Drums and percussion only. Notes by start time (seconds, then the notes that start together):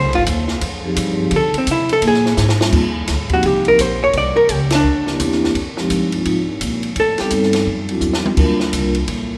0.13 ride
0.26 kick, hi-hat pedal, ride
0.48 snare
0.61 kick, ride
0.96 kick, hi-hat pedal, ride
1.31 kick, ride
1.54 ride
1.67 kick, hi-hat pedal, ride
1.89 ride
2.02 kick, ride
2.14 snare
2.26 snare
2.37 snare, hi-hat pedal
2.49 snare
2.61 snare
2.73 kick, crash
3.08 kick, snare, hi-hat pedal, ride
3.30 kick, ride
3.43 kick, ride
3.65 ride
3.79 kick, hi-hat pedal, ride
4.13 kick, ride
4.49 kick, hi-hat pedal, ride
4.70 snare, ride
5.07 snare
5.20 kick, hi-hat pedal, ride
5.32 snare
5.44 snare
5.55 kick, ride
5.77 snare
5.90 kick, hi-hat pedal, ride
6.12 ride
6.25 kick, ride
6.61 kick, hi-hat pedal, ride
6.83 ride
6.96 kick, ride
7.18 snare, ride
7.30 kick, hi-hat pedal, ride
7.43 snare
7.53 snare, ride
7.66 kick
7.89 ride
8.01 hi-hat pedal
8.13 snare
8.26 mid tom
8.37 kick, crash
8.60 snare
8.73 kick, hi-hat pedal, ride
8.95 ride
9.08 kick, ride